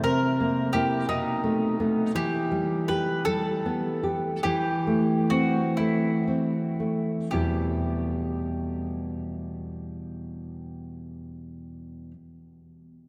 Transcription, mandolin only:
0.04 0.70 A#4 medium
0.73 1.05 G4 soft
1.09 2.11 D#4 soft
2.16 2.84 G4 medium
2.88 3.23 B4 medium
3.25 4.39 A4 medium
4.43 5.26 G4 medium
5.30 5.73 F#4 soft
5.77 6.23 E4 soft
7.31 12.11 G4 soft

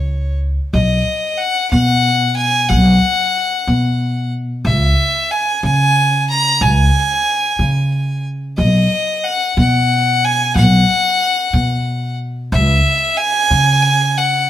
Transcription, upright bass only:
0.00 0.57 C#2 medium
0.73 1.01 B1 loud
1.72 2.71 B2 loud
2.70 2.97 B1 loud
3.67 4.66 B2 loud
4.65 4.92 C#2 loud
5.63 6.63 C#3 loud
6.61 6.88 C#2 loud
7.59 8.59 C#3 loud
8.58 8.85 B1 medium
9.57 10.57 B2 loud
10.55 10.82 B1 loud
11.53 12.54 B2 loud
12.52 12.80 C#2 loud
13.51 14.50 C#3 loud

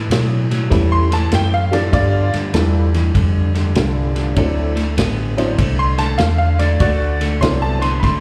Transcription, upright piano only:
0.92 1.12 C6 loud
1.13 1.33 A5 medium
1.35 1.54 G5 loud
1.54 1.73 F5 loud
1.73 1.92 D5 medium
1.93 2.31 F4 medium
1.93 2.33 D5 loud
5.79 5.99 C6 loud
5.99 6.19 A5 medium
6.18 6.37 F5 medium
6.38 6.59 F5 loud
6.59 6.79 D5 medium
6.81 7.18 F#4 medium
6.81 7.20 D5 loud
7.41 7.61 C6 medium
7.62 7.82 A5 medium
7.82 8.02 C6 medium
8.00 8.04 B5 medium
8.04 8.20 C6 medium

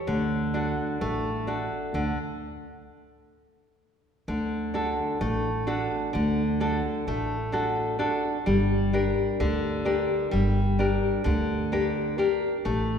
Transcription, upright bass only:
0.08 0.73 D2 medium
1.02 1.67 A1 medium
1.94 2.11 D2 medium
4.28 4.93 D2 medium
5.21 5.86 A1 medium
6.15 6.80 D2 loud
7.07 8.05 A1 medium
8.47 9.12 G1 medium
9.40 10.06 D2 medium
10.33 10.98 G1 medium
11.26 12.24 D2 medium
12.66 12.99 A1 medium

